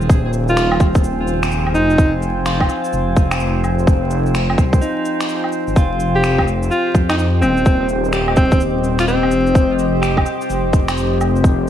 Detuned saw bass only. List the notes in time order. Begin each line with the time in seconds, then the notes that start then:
Already playing: D#1
1.75 F1
2.93 F1
4.58 C2
5.68 G#1
5.76 F1
6.94 F2
7.42 D#1
9.31 F1
10.50 F1